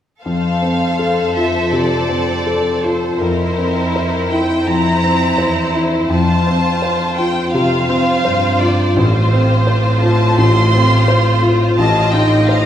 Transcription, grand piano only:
0.26 F2
0.62 C4
0.99 A4
1.37 F4
1.73 C3
2.09 C4
2.47 A4
2.84 F4
3.21 F2
3.58 C4
3.96 C5
4.32 E4
4.67 F2
5.04 C4
5.38 C5
5.75 E4
6.10 F2
6.47 C4
6.82 C5
7.19 F4
7.54 C3
7.89 C4
8.25 C5
8.61 F4
8.96 A1
9.32 C4
9.67 C5
10.02 F4
10.38 A1
10.74 C4
11.08 C5
11.42 F4
11.79 A1
12.14 D#4
12.49 C5

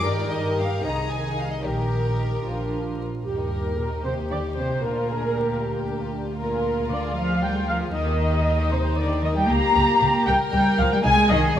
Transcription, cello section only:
0.03 A#4
0.83 D#4
1.64 G4
3.25 G2
3.78 A#2
4.05 C3
4.30 D3
4.57 C3
4.83 A#2
6.39 A#2
6.91 D3
7.17 F3
7.42 G3
7.68 F3
7.94 D#3
8.71 C3
8.97 D3
9.22 D#3
9.36 G3
9.48 A#3
10.26 G3
10.53 G3
10.79 F3
10.92 G3
11.05 G#3
11.31 D#3

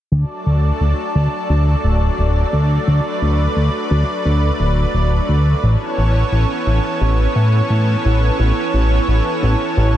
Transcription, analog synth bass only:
0.12 D2
0.46 D2
0.81 D2
1.15 D2
1.50 D2
1.84 D1
2.19 D1
2.53 D2
2.87 D2
3.22 D2
3.56 D2
3.91 D2
4.25 D2
4.60 D1
4.94 D1
5.29 D2
5.63 A1
5.98 A1
6.32 A1
6.67 A1
7.01 A1
7.36 A2
7.70 A2
8.05 A1
8.39 A1
8.74 A1
9.08 A1
9.43 A1
9.77 A1

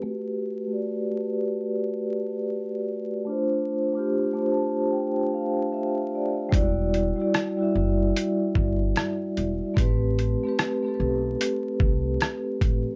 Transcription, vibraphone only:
0.02 A3 F#4 G4
0.08 B4
0.67 A3 F#4 G4
0.73 D5
1.10 A3 F#4 G4
1.16 B4
3.25 A3 D4 F4
3.30 C5
3.93 A3 D4 F4
3.99 G4
4.33 A3 D4 F4
4.39 C5
4.52 A5
4.92 G5
5.34 F5
5.72 E5
6.15 D5
6.49 G3 E4 F#4
6.55 D5
7.16 G3 E4 F#4
7.21 D5
7.57 G3 E4 F#4
7.62 E5
9.74 A3 C4 G4
9.80 B4
10.43 A3 C4 G4
10.48 B4
10.83 A3 C4 G4
10.88 A4
10.95 B4

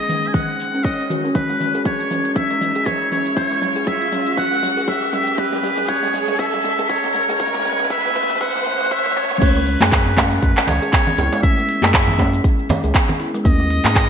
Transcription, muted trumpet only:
Already playing: D#5
0.28 G#5
0.34 F#5
0.84 D#5
1.35 B4
1.85 C#5
2.36 E5
2.86 C#5
3.12 C#5
3.37 C#5
3.87 E5
4.38 F#5
4.88 E5
5.13 E5
5.39 B4
5.89 C#5
6.39 E5
6.90 C#5
7.15 C#5
7.41 C#5
7.91 E5
8.41 F#5
8.92 E5
9.17 C#5
9.42 B4
10.42 B4
10.67 C#5
11.43 E5
11.94 E5
13.45 D#5

